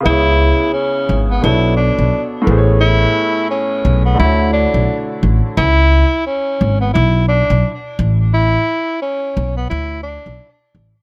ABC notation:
X:1
M:4/4
L:1/16
Q:"Swing 16ths" 1/4=87
K:C#phr
V:1 name="Upright piano"
[C,B,EGc]8 [B,,B,DAc]6 [A,,A,B,G=c^c]2- | [A,,A,B,G=c^c]8 [D,A,EFc]8 | z16 | z16 |]
V:2 name="Tenor saxophone"
E4 C3 B, E2 D3 z3 | E4 C3 B, E2 D3 z3 | E4 C3 B, E2 D3 z3 | E4 C3 B, E2 D3 z3 |]
V:3 name="Upright bass" clef=bass
C,,3 z3 G,,,2 B,,,3 B,,, z2 A,,,2- | A,,,2 z4 B,,,2 D,,3 B,,, z2 A,,, z | C,,3 z3 G,,,2 B,,,3 B,,, z2 A,,,2- | A,,,2 z4 B,,,2 D,,3 B,,, z2 A,,, z |]